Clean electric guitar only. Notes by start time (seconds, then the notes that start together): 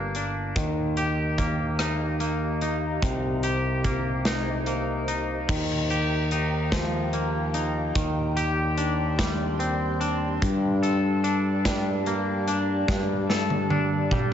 Already playing: G2 A#3 D4 G4
0.16 D4
0.57 D#3
0.97 G4
1.38 A#3
1.79 D#4
2.20 A#3
2.62 D#4
3.03 C3
3.44 G4
3.85 A#3
4.26 D#4
4.67 A#3
5.08 D#4
5.49 D#3
5.90 G4
6.32 D#4
6.73 F3
7.13 A#3
7.54 D#4
7.96 D#3
8.37 G4
8.78 D4
9.19 G3
9.59 C4
10.00 D4
10.42 G2
10.83 A4
11.24 D4
11.65 G3
12.07 A#3
12.48 D4
12.88 G2
13.30 A4
13.71 D4
14.11 G3